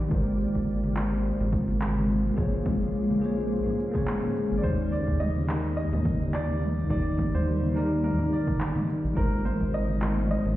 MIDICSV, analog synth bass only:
0, 0, Header, 1, 2, 480
1, 0, Start_track
1, 0, Key_signature, -3, "major"
1, 0, Tempo, 566038
1, 96, Time_signature, 4, 2, 24, 8
1, 8958, End_track
2, 0, Start_track
2, 0, Title_t, "Analog synth bass"
2, 0, Program_c, 0, 38
2, 92, Note_on_c, 0, 32, 96
2, 399, Note_off_c, 0, 32, 0
2, 468, Note_on_c, 0, 32, 90
2, 1120, Note_off_c, 0, 32, 0
2, 1188, Note_on_c, 0, 32, 101
2, 1960, Note_off_c, 0, 32, 0
2, 2014, Note_on_c, 0, 34, 96
2, 2320, Note_off_c, 0, 34, 0
2, 2392, Note_on_c, 0, 34, 88
2, 3043, Note_off_c, 0, 34, 0
2, 3829, Note_on_c, 0, 32, 91
2, 3902, Note_off_c, 0, 32, 0
2, 3932, Note_on_c, 0, 39, 96
2, 4239, Note_off_c, 0, 39, 0
2, 4306, Note_on_c, 0, 39, 90
2, 4960, Note_off_c, 0, 39, 0
2, 5027, Note_on_c, 0, 39, 106
2, 5800, Note_off_c, 0, 39, 0
2, 5853, Note_on_c, 0, 39, 104
2, 6160, Note_off_c, 0, 39, 0
2, 6231, Note_on_c, 0, 39, 87
2, 6882, Note_off_c, 0, 39, 0
2, 7667, Note_on_c, 0, 34, 87
2, 7741, Note_off_c, 0, 34, 0
2, 7773, Note_on_c, 0, 32, 97
2, 8080, Note_off_c, 0, 32, 0
2, 8148, Note_on_c, 0, 32, 95
2, 8800, Note_off_c, 0, 32, 0
2, 8865, Note_on_c, 0, 32, 106
2, 8958, Note_off_c, 0, 32, 0
2, 8958, End_track
0, 0, End_of_file